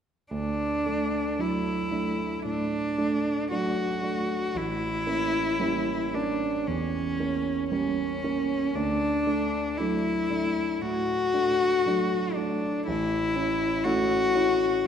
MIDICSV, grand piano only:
0, 0, Header, 1, 2, 480
1, 0, Start_track
1, 0, Key_signature, 2, "major"
1, 0, Tempo, 1073345
1, 143, Time_signature, 4, 2, 24, 8
1, 1100, Tempo, 1050788
1, 3500, Tempo, 1034483
1, 5420, Tempo, 1003344
1, 6864, End_track
2, 0, Start_track
2, 0, Title_t, "Grand piano"
2, 0, Program_c, 0, 0
2, 137, Note_on_c, 0, 38, 36
2, 217, Control_c, 0, 64, 127
2, 375, Note_off_c, 0, 38, 0
2, 385, Note_on_c, 0, 57, 25
2, 385, Note_on_c, 0, 62, 27
2, 606, Note_off_c, 0, 57, 0
2, 606, Note_off_c, 0, 62, 0
2, 622, Note_on_c, 0, 54, 28
2, 623, Note_on_c, 0, 57, 28
2, 623, Note_on_c, 0, 62, 29
2, 844, Note_off_c, 0, 54, 0
2, 844, Note_off_c, 0, 57, 0
2, 844, Note_off_c, 0, 62, 0
2, 855, Note_on_c, 0, 57, 28
2, 858, Note_on_c, 0, 62, 33
2, 1080, Note_off_c, 0, 57, 0
2, 1081, Note_off_c, 0, 62, 0
2, 1094, Note_on_c, 0, 45, 32
2, 1332, Note_off_c, 0, 45, 0
2, 1339, Note_on_c, 0, 57, 29
2, 1339, Note_on_c, 0, 62, 30
2, 1562, Note_off_c, 0, 57, 0
2, 1562, Note_off_c, 0, 62, 0
2, 1580, Note_on_c, 0, 54, 29
2, 1582, Note_on_c, 0, 57, 30
2, 1585, Note_on_c, 0, 62, 33
2, 1802, Note_off_c, 0, 54, 0
2, 1803, Note_off_c, 0, 57, 0
2, 1804, Note_off_c, 0, 62, 0
2, 1817, Note_on_c, 0, 57, 25
2, 1819, Note_on_c, 0, 62, 30
2, 2038, Note_off_c, 0, 57, 0
2, 2039, Note_off_c, 0, 62, 0
2, 2055, Note_on_c, 0, 33, 34
2, 2066, Control_c, 0, 64, 0
2, 2133, Control_c, 0, 64, 127
2, 2286, Note_off_c, 0, 33, 0
2, 2291, Note_on_c, 0, 58, 30
2, 2292, Note_on_c, 0, 61, 32
2, 2515, Note_off_c, 0, 58, 0
2, 2516, Note_off_c, 0, 61, 0
2, 2532, Note_on_c, 0, 55, 29
2, 2536, Note_on_c, 0, 61, 30
2, 2537, Note_on_c, 0, 58, 29
2, 2761, Note_off_c, 0, 55, 0
2, 2763, Note_off_c, 0, 58, 0
2, 2763, Note_off_c, 0, 61, 0
2, 2782, Note_on_c, 0, 58, 31
2, 2785, Note_on_c, 0, 61, 34
2, 3007, Note_off_c, 0, 58, 0
2, 3009, Note_off_c, 0, 61, 0
2, 3026, Note_on_c, 0, 40, 33
2, 3259, Note_off_c, 0, 40, 0
2, 3265, Note_on_c, 0, 58, 31
2, 3269, Note_on_c, 0, 61, 30
2, 3484, Note_off_c, 0, 58, 0
2, 3486, Note_off_c, 0, 61, 0
2, 3501, Note_on_c, 0, 55, 29
2, 3502, Note_on_c, 0, 58, 30
2, 3506, Note_on_c, 0, 61, 32
2, 3723, Note_off_c, 0, 55, 0
2, 3723, Note_off_c, 0, 58, 0
2, 3725, Note_off_c, 0, 61, 0
2, 3746, Note_on_c, 0, 58, 28
2, 3746, Note_on_c, 0, 61, 33
2, 3965, Note_off_c, 0, 58, 0
2, 3965, Note_off_c, 0, 61, 0
2, 3980, Note_on_c, 0, 38, 38
2, 3990, Control_c, 0, 64, 0
2, 4077, Control_c, 0, 64, 127
2, 4213, Note_off_c, 0, 38, 0
2, 4221, Note_on_c, 0, 57, 29
2, 4222, Note_on_c, 0, 62, 33
2, 4441, Note_off_c, 0, 57, 0
2, 4442, Note_off_c, 0, 62, 0
2, 4466, Note_on_c, 0, 54, 30
2, 4468, Note_on_c, 0, 57, 32
2, 4468, Note_on_c, 0, 62, 30
2, 4683, Note_off_c, 0, 54, 0
2, 4684, Note_off_c, 0, 57, 0
2, 4685, Note_off_c, 0, 62, 0
2, 4700, Note_on_c, 0, 57, 34
2, 4701, Note_on_c, 0, 62, 33
2, 4921, Note_off_c, 0, 57, 0
2, 4922, Note_off_c, 0, 62, 0
2, 4937, Note_on_c, 0, 45, 32
2, 5173, Note_off_c, 0, 45, 0
2, 5180, Note_on_c, 0, 57, 28
2, 5182, Note_on_c, 0, 62, 32
2, 5404, Note_off_c, 0, 57, 0
2, 5405, Note_off_c, 0, 62, 0
2, 5425, Note_on_c, 0, 54, 31
2, 5426, Note_on_c, 0, 57, 30
2, 5429, Note_on_c, 0, 62, 34
2, 5649, Note_off_c, 0, 54, 0
2, 5650, Note_off_c, 0, 57, 0
2, 5652, Note_off_c, 0, 62, 0
2, 5670, Note_on_c, 0, 57, 33
2, 5673, Note_on_c, 0, 62, 35
2, 5888, Note_off_c, 0, 57, 0
2, 5889, Note_off_c, 0, 62, 0
2, 5912, Note_on_c, 0, 33, 43
2, 5913, Control_c, 0, 64, 0
2, 5992, Control_c, 0, 64, 127
2, 6137, Note_off_c, 0, 33, 0
2, 6142, Note_on_c, 0, 61, 29
2, 6142, Note_on_c, 0, 64, 32
2, 6361, Note_off_c, 0, 61, 0
2, 6362, Note_off_c, 0, 64, 0
2, 6377, Note_on_c, 0, 57, 36
2, 6380, Note_on_c, 0, 61, 30
2, 6380, Note_on_c, 0, 64, 36
2, 6602, Note_off_c, 0, 57, 0
2, 6603, Note_off_c, 0, 61, 0
2, 6603, Note_off_c, 0, 64, 0
2, 6616, Note_on_c, 0, 61, 34
2, 6619, Note_on_c, 0, 64, 35
2, 6841, Note_off_c, 0, 61, 0
2, 6843, Note_off_c, 0, 64, 0
2, 6864, End_track
0, 0, End_of_file